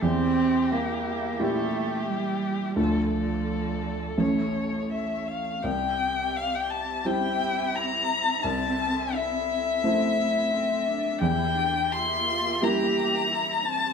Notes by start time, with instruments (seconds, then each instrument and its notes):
0.02 felt piano E2, string section G3 E4 E5, cello C4, violin G4
0.71 cello A#3
1.39 felt piano A#2 E4 G4, cello A3, violin G4
2.08 cello G3
2.75 felt piano D2 A3 F4 A4, cello F3, string section A3 A4 D5, violin A4
3.14 violin A4
4.17 felt piano A1 A3 C#4 A4, cello E3, string section C#5, violin C#5
4.92 violin E5
5.28 violin F5
5.63 felt piano C2, string section C4 G4 E5, violin G5
6.36 violin F5
6.55 violin G5
6.70 violin A5
7.03 felt piano G3 C4 E4, cello E4, violin G5
7.75 violin A#5
8.42 felt piano C2, cello C4, string section A4, violin A5
9.14 cello E4, violin E5
9.84 felt piano A3 C4 E4, cello C4
10.19 cello E4
10.51 cello C4
10.85 cello D4
11.19 felt piano E2, string section A#3 G4 E5, cello E4, violin G5
11.53 cello D4
11.91 cello E4, violin C6
12.26 cello F4
12.60 felt piano G3 A#3 E4, cello G4, violin A#5
13.27 cello E4
13.63 cello C4, violin A5